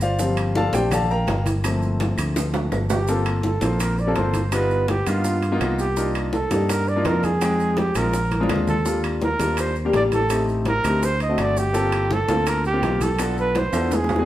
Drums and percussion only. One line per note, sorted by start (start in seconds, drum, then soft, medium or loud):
0.01 high bongo soft
0.01 high conga soft
0.01 maracas medium
0.19 high bongo medium
0.19 high conga soft
0.19 maracas medium
0.37 high conga soft
0.37 high timbale medium
0.37 claves medium
0.37 maracas soft
0.55 high bongo medium
0.55 high conga loud
0.55 maracas soft
0.73 high conga loud
0.73 high timbale medium
0.73 maracas medium
0.91 high bongo medium
0.91 high conga soft
0.91 low conga medium
0.91 high timbale medium
0.91 claves medium
0.91 maracas medium
1.09 high conga soft
1.09 maracas soft
1.27 high bongo medium
1.27 low bongo medium
1.27 high conga medium
1.27 high timbale medium
1.27 low timbale medium
1.27 maracas soft
1.46 high conga medium
1.46 high timbale medium
1.46 maracas medium
1.64 high bongo medium
1.64 high conga soft
1.64 high timbale loud
1.64 claves medium
1.64 maracas medium
1.82 high conga soft
1.82 maracas soft
2.00 high bongo medium
2.00 high conga loud
2.00 high timbale medium
2.00 maracas soft
2.18 high bongo soft
2.18 high conga soft
2.18 high timbale medium
2.18 claves medium
2.18 maracas medium
2.36 high bongo medium
2.36 high conga soft
2.36 high timbale medium
2.36 maracas medium
2.54 high bongo medium
2.54 high conga soft
2.54 low timbale loud
2.54 maracas soft
2.72 low bongo medium
2.72 high conga soft
2.72 low timbale medium
2.72 claves medium
2.72 maracas soft
2.90 low bongo medium
2.90 high conga soft
2.90 low timbale loud
2.90 maracas medium
3.08 high bongo medium
3.08 high conga soft
3.08 maracas medium
3.25 high conga soft
3.25 high timbale medium
3.25 claves medium
3.25 maracas soft
3.43 high bongo medium
3.43 high conga medium
3.43 maracas soft
3.61 high conga loud
3.61 high timbale medium
3.61 maracas medium
3.79 high bongo medium
3.79 high conga soft
3.79 high timbale medium
3.79 claves medium
3.79 maracas medium
3.98 high conga soft
3.98 maracas soft
4.15 high bongo medium
4.15 low bongo medium
4.15 high conga medium
4.15 high timbale medium
4.15 low timbale medium
4.15 maracas soft
4.33 high conga medium
4.33 high timbale medium
4.33 maracas medium
4.52 high bongo medium
4.52 high conga soft
4.52 high timbale medium
4.52 claves medium
4.52 maracas medium
4.70 high conga soft
4.70 maracas soft
4.88 high bongo medium
4.88 high conga loud
4.88 high timbale medium
4.88 maracas soft
5.06 high bongo soft
5.06 high conga soft
5.06 high timbale medium
5.06 claves medium
5.06 maracas medium
5.24 high bongo medium
5.24 high conga soft
5.24 maracas medium
5.42 high bongo soft
5.42 high conga soft
5.42 high timbale medium
5.42 maracas soft
5.61 high bongo medium
5.61 low bongo medium
5.61 high conga soft
5.61 high timbale medium
5.61 low timbale medium
5.61 claves medium
5.61 maracas soft
5.79 high bongo soft
5.79 high conga soft
5.79 maracas medium
5.97 high bongo medium
5.97 high conga soft
5.97 maracas medium
6.15 high conga soft
6.15 high timbale medium
6.15 claves medium
6.15 maracas soft
6.33 high bongo medium
6.33 high conga loud
6.33 maracas soft
6.51 high conga loud
6.51 high timbale medium
6.51 maracas medium
6.69 high bongo medium
6.69 high conga soft
6.69 high timbale medium
6.69 claves medium
6.69 maracas medium
6.87 high conga soft
6.87 maracas soft
7.05 high bongo medium
7.05 low bongo medium
7.05 high conga medium
7.05 high timbale medium
7.05 low timbale medium
7.05 maracas soft
7.23 high conga medium
7.23 high timbale medium
7.23 maracas medium
7.41 high bongo medium
7.41 high conga soft
7.41 high timbale loud
7.41 claves medium
7.41 maracas medium
7.59 high conga soft
7.59 maracas soft
7.77 high bongo medium
7.77 high conga loud
7.77 high timbale medium
7.77 maracas soft
7.95 high bongo soft
7.95 high conga soft
7.95 high timbale medium
7.95 claves medium
7.95 maracas medium
8.13 high bongo medium
8.13 high conga soft
8.13 maracas medium
8.31 high bongo soft
8.31 high conga medium
8.31 high timbale medium
8.31 maracas soft
8.43 high conga medium
8.49 high bongo medium
8.49 low bongo medium
8.49 high timbale medium
8.49 low timbale medium
8.49 claves medium
8.49 maracas soft
8.56 low conga medium
8.68 high bongo soft
8.68 low conga medium
8.68 maracas medium
8.85 high bongo medium
8.85 high conga soft
8.85 maracas medium
9.04 high conga soft
9.04 high timbale medium
9.04 claves medium
9.04 maracas soft
9.21 high bongo medium
9.21 high conga loud
9.21 maracas soft
9.39 high conga medium
9.39 high timbale medium
9.39 maracas medium
9.57 high bongo medium
9.57 high conga soft
9.57 high timbale medium
9.57 claves medium
9.57 maracas medium
9.76 high conga soft
9.76 maracas soft
9.93 high bongo medium
9.93 low bongo medium
9.93 high conga medium
9.93 high timbale medium
9.93 maracas soft
10.12 high conga medium
10.12 high timbale medium
10.12 maracas medium
10.30 high bongo medium
10.30 high conga soft
10.30 high timbale medium
10.30 claves medium
10.30 maracas medium
10.48 high conga soft
10.48 maracas soft
10.65 high bongo medium
10.65 high conga medium
10.65 high timbale medium
10.65 maracas soft
10.84 high bongo soft
10.84 high conga soft
10.84 high timbale medium
10.84 claves medium
10.84 maracas medium
11.02 high bongo medium
11.02 high conga soft
11.02 maracas medium
11.20 high bongo soft
11.20 high conga soft
11.20 high timbale medium
11.20 maracas soft
11.38 high bongo medium
11.38 low bongo medium
11.38 high conga soft
11.38 high timbale medium
11.38 claves medium
11.38 maracas soft
11.56 high bongo soft
11.56 high conga soft
11.56 maracas medium
11.74 high bongo medium
11.74 high conga soft
11.74 maracas medium
11.92 high conga soft
11.92 high timbale medium
11.92 claves medium
11.92 maracas soft
12.11 high bongo medium
12.11 high conga loud
12.11 maracas soft
12.29 high conga loud
12.29 high timbale medium
12.29 maracas medium
12.46 high bongo medium
12.46 high conga soft
12.46 high timbale loud
12.46 claves medium
12.46 maracas medium
12.65 high conga soft
12.65 maracas soft
12.83 high bongo medium
12.83 low bongo medium
12.83 high conga medium
12.83 high timbale medium
12.83 low timbale medium
12.83 maracas soft
13.01 high conga medium
13.01 high timbale medium
13.01 maracas medium
13.19 high bongo medium
13.19 high conga soft
13.19 high timbale medium
13.19 claves medium
13.19 maracas medium
13.37 high conga soft
13.37 maracas soft
13.55 high bongo medium
13.55 high conga loud
13.55 high timbale medium
13.55 maracas soft
13.73 high bongo soft
13.73 high conga soft
13.73 high timbale medium
13.73 claves medium
13.73 maracas medium
13.91 high bongo medium
13.91 high conga medium
13.91 high timbale medium
13.91 maracas medium
14.04 high bongo medium
14.09 high conga medium
14.09 low timbale loud
14.09 maracas soft
14.16 high bongo medium